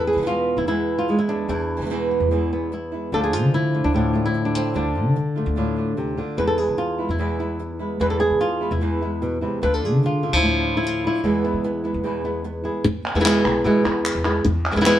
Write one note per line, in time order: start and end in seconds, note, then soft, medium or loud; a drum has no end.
0.00 0.18 E2 medium
0.00 0.68 E2 medium
0.00 0.37 B4 loud
0.07 0.27 G#4 medium
0.13 0.16 E3 soft
0.13 0.53 E3 medium
0.13 0.17 G#3 soft
0.13 0.17 B3 soft
0.13 0.17 E4 soft
0.17 0.20 E3 soft
0.17 0.21 G#3 soft
0.17 0.21 B3 medium
0.17 0.22 E4 soft
0.21 0.29 E3 medium
0.21 0.26 G#3 medium
0.21 0.26 B3 medium
0.21 0.30 E4 medium
0.26 0.66 B2 medium
0.26 0.67 G#3 medium
0.26 0.67 B3 medium
0.26 0.57 F4 medium
0.57 1.30 E2 medium
0.57 0.67 E4 medium
0.67 1.48 E2 medium
0.67 1.07 B2 medium
0.67 1.07 E3 medium
0.67 1.07 G#3 medium
0.67 1.08 B3 medium
0.67 1.17 E4 medium
0.67 1.08 E4 medium
0.99 1.19 F4 medium
1.08 1.47 G#3 soft
1.08 muted nylon-string guitar stroke soft
1.19 1.48 E4 medium
1.28 1.49 G#3 soft
1.28 1.49 B3 soft
1.28 1.90 D4 medium
1.28 1.48 E4 soft
1.48 1.81 E2 medium
1.48 2.30 E2 medium
1.48 2.72 E4 medium
1.48 muted nylon-string guitar stroke medium
1.77 1.80 E3 soft
1.77 2.16 E3 medium
1.77 1.80 G#3 soft
1.77 1.81 B3 soft
1.77 1.81 E4 soft
1.81 1.84 E3 soft
1.81 1.85 G#3 soft
1.81 1.85 B3 medium
1.81 1.86 E4 medium
1.85 1.89 E3 medium
1.85 1.90 G#3 medium
1.85 1.90 B3 medium
1.85 1.90 E4 medium
1.90 2.30 B2 medium
1.90 2.30 E3 medium
1.90 2.30 G#3 medium
1.90 2.30 B3 medium
1.90 2.30 E4 medium
2.11 2.52 B3 soft
2.20 2.94 E2 medium
2.31 3.13 E2 medium
2.31 2.71 B2 medium
2.31 2.71 E3 medium
2.31 2.71 G#3 medium
2.31 2.72 B3 medium
2.31 2.72 E4 medium
2.53 3.13 B3 soft
2.72 3.13 E4 soft
2.72 muted nylon-string guitar stroke soft
2.92 3.13 G#3 soft
2.92 3.12 B3 soft
2.92 3.11 E4 soft
3.12 3.43 D2 medium
3.12 3.32 D3 medium
3.12 4.73 D3 medium
3.12 4.73 F3 soft
3.12 3.32 A3 medium
3.12 3.74 A3 soft
3.12 3.33 D4 medium
3.12 3.33 D4 soft
3.12 3.32 F4 medium
3.12 3.23 A4 loud
3.24 3.54 G#4 medium
3.33 3.53 A3 soft
3.33 3.53 D4 soft
3.33 3.52 F4 soft
3.33 3.84 F4 medium
3.43 3.79 D3 medium
3.53 4.24 E4 medium
3.53 muted nylon-string guitar stroke soft
3.73 4.14 A3 soft
3.73 3.93 A3 soft
3.73 3.93 D4 soft
3.73 3.93 F4 soft
3.84 4.57 D2 medium
3.84 3.94 D4 medium
3.93 4.73 A2 medium
3.93 4.13 D3 medium
3.93 4.13 A3 medium
3.93 4.13 D4 medium
3.93 4.44 D4 medium
3.93 4.12 F4 medium
4.13 4.55 A3 soft
4.13 4.33 A3 soft
4.13 4.33 D4 soft
4.13 4.33 F4 soft
4.26 4.86 E4 medium
4.34 muted nylon-string guitar stroke soft
4.45 4.75 D4 medium
4.54 4.74 A3 soft
4.54 5.16 C4 medium
4.54 4.74 D4 soft
4.54 4.74 F4 soft
4.74 5.06 D2 medium
4.74 4.94 D3 medium
4.74 6.17 D3 medium
4.74 4.95 A3 medium
4.74 4.95 D4 medium
4.74 5.98 D4 medium
4.74 4.94 F4 medium
4.95 5.15 A3 soft
4.95 5.15 D4 soft
4.95 5.15 F4 soft
5.06 5.42 D3 medium
5.16 muted nylon-string guitar stroke soft
5.36 6.36 A3 soft
5.36 5.55 A3 soft
5.36 5.56 D4 soft
5.36 5.55 F4 soft
5.46 6.19 D2 medium
5.56 5.97 A2 medium
5.56 5.76 D3 medium
5.56 5.76 A3 medium
5.56 5.76 D4 medium
5.56 5.75 F4 medium
5.77 5.96 A3 soft
5.77 5.97 D4 soft
5.77 5.96 F4 soft
5.97 6.18 C3 medium
5.97 muted nylon-string guitar stroke soft
6.17 6.38 D3 medium
6.17 6.38 A3 soft
6.17 6.38 D4 soft
6.17 6.37 F4 soft
6.37 7.19 E2 medium
6.37 6.70 E2 medium
6.37 6.57 B2 medium
6.37 6.57 E3 medium
6.37 6.58 G#3 medium
6.37 6.58 B3 medium
6.37 6.56 E4 medium
6.37 6.47 B4 medium
6.47 6.58 A4 medium
6.57 6.77 G#3 soft
6.57 6.77 B3 soft
6.57 6.77 E4 soft
6.57 7.09 G#4 medium
6.68 7.05 E3 medium
6.78 7.09 F4 medium
6.78 muted nylon-string guitar stroke medium
6.98 7.18 G#3 soft
6.98 7.19 B3 soft
6.98 7.18 E4 soft
7.09 7.82 E2 medium
7.09 7.71 E4 medium
7.18 7.99 E2 medium
7.18 7.38 B2 medium
7.18 7.39 E3 medium
7.18 7.39 G#3 medium
7.18 7.39 B3 medium
7.18 7.38 E4 medium
7.39 7.59 G#3 soft
7.39 7.98 B3 soft
7.39 7.59 B3 soft
7.39 7.59 E4 soft
7.59 muted nylon-string guitar stroke soft
7.79 8.00 G#3 soft
7.79 8.00 B3 soft
7.79 7.99 E4 soft
8.00 8.32 E2 medium
8.00 8.80 E2 medium
8.00 8.19 B2 medium
8.00 8.20 E3 medium
8.00 8.20 G#3 medium
8.00 8.19 B3 medium
8.00 8.18 E4 medium
8.00 8.10 B4 loud
8.10 8.19 A4 medium
8.19 8.40 G#3 soft
8.19 8.40 B3 soft
8.19 8.39 E4 soft
8.19 8.71 G#4 medium
8.30 8.67 E3 medium
8.40 8.71 F4 medium
8.40 muted nylon-string guitar stroke soft
8.61 8.81 G#3 soft
8.61 8.81 B3 soft
8.61 8.80 E4 soft
8.71 9.44 E2 medium
8.71 9.32 E4 medium
8.80 9.62 E2 medium
8.80 9.00 B2 medium
8.80 9.01 E3 medium
8.80 9.01 G#3 medium
8.80 9.01 B3 medium
8.80 9.00 E4 medium
9.01 9.21 G#3 soft
9.01 9.21 B3 soft
9.01 9.60 B3 soft
9.01 9.21 E4 soft
9.22 9.42 B2 medium
9.22 muted nylon-string guitar stroke soft
9.41 9.62 C3 medium
9.41 9.62 G#3 soft
9.41 9.62 B3 soft
9.41 9.61 E4 soft
9.62 9.93 D2 medium
9.62 9.81 D3 medium
9.62 10.22 D3 medium
9.62 9.82 A3 medium
9.62 9.82 D4 medium
9.62 9.81 F4 medium
9.62 9.74 B4 loud
9.74 9.85 A4 medium
9.82 10.02 A3 soft
9.82 10.02 D4 soft
9.82 10.02 F4 soft
9.82 10.34 G#4 medium
9.93 10.29 D3 medium
10.03 10.46 F4 medium
10.03 muted nylon-string guitar stroke soft
10.23 10.33 D3 soft
10.23 10.43 A3 soft
10.23 10.43 D4 soft
10.23 10.43 F4 soft
10.33 11.05 D2 medium
10.33 11.24 F3 soft
10.33 10.75 E4 medium
10.43 11.21 A2 medium
10.43 10.63 D3 medium
10.43 10.63 A3 medium
10.43 10.63 D4 medium
10.43 10.87 D4 medium
10.43 10.62 F4 medium
10.63 10.82 A3 soft
10.63 10.83 D4 soft
10.63 10.83 F4 soft
10.77 11.05 E4 medium
10.83 11.25 F4 medium
10.83 muted nylon-string guitar stroke soft
11.04 11.24 A3 soft
11.04 11.24 D4 soft
11.04 12.64 E4 medium
11.04 11.23 F4 soft
11.24 11.55 E2 medium
11.24 12.03 E2 medium
11.24 11.43 B2 medium
11.24 11.43 E3 medium
11.24 12.83 G#3 medium
11.24 11.44 G#3 medium
11.24 11.43 B3 soft
11.24 11.44 B3 medium
11.24 11.43 E4 medium
11.44 11.64 G#3 soft
11.44 11.63 B3 soft
11.44 11.64 B3 soft
11.44 11.63 E4 soft
11.54 11.90 E3 medium
11.64 11.84 B3 soft
11.64 muted nylon-string guitar stroke medium
11.84 12.03 G#3 soft
11.84 12.24 B3 soft
11.84 12.04 B3 soft
11.84 12.03 E4 soft
11.94 12.66 E2 medium
12.04 12.83 E2 medium
12.04 12.23 B2 medium
12.04 12.24 E3 medium
12.04 12.24 G#3 medium
12.04 12.24 B3 medium
12.04 12.23 E4 medium
12.24 12.44 G#3 soft
12.24 12.44 B3 soft
12.24 12.44 E4 soft
12.44 12.83 B3 soft
12.44 muted nylon-string guitar stroke soft
12.64 12.85 G#3 soft
12.64 12.84 B3 soft
12.64 12.84 E4 soft
12.64 12.83 G#4 soft
12.84 13.12 E2 medium
12.84 muted nylon-string guitar stroke medium
13.15 13.42 E2 medium
13.15 13.18 E3 medium
13.15 13.19 G#3 medium
13.15 13.20 B3 medium
13.15 13.20 E4 medium
13.20 13.24 E3 medium
13.20 13.24 G#3 medium
13.20 13.24 B3 medium
13.20 13.24 E4 medium
13.25 13.44 B2 medium
13.25 13.44 E3 medium
13.25 13.44 G#3 medium
13.25 13.44 B3 medium
13.25 13.44 E4 medium
13.25 clap medium
13.44 13.63 B1 medium
13.44 13.64 G#3 soft
13.44 13.65 B3 soft
13.44 13.64 E4 medium
13.44 clap medium
13.64 13.83 E2 medium
13.64 13.84 B2 medium
13.64 13.84 E3 medium
13.64 13.85 G#3 medium
13.64 13.84 B3 medium
13.64 13.83 E4 medium
13.84 14.12 E2 medium
13.84 14.25 G#3 soft
13.84 14.24 B3 soft
13.84 14.23 E4 medium
14.05 clap medium
14.15 14.42 E2 medium
14.24 14.45 G#3 soft
14.24 14.45 B3 medium
14.24 14.44 E4 medium
14.45 14.72 E2 medium
14.45 muted nylon-string guitar stroke medium
14.71 14.99 E2 medium
14.71 14.75 E3 soft
14.71 14.75 G#3 medium
14.71 14.76 B3 medium
14.71 14.76 E4 medium
14.76 14.80 E3 medium
14.76 14.80 G#3 medium
14.76 14.80 B3 medium
14.76 14.80 E4 medium
14.81 14.84 E3 medium
14.81 14.85 G#3 medium
14.81 14.85 B3 medium
14.81 14.85 E4 medium
14.85 14.99 B2 medium
14.85 14.99 E3 medium
14.85 14.99 G#3 medium
14.85 14.99 B3 loud
14.85 14.99 E4 medium
14.85 clap medium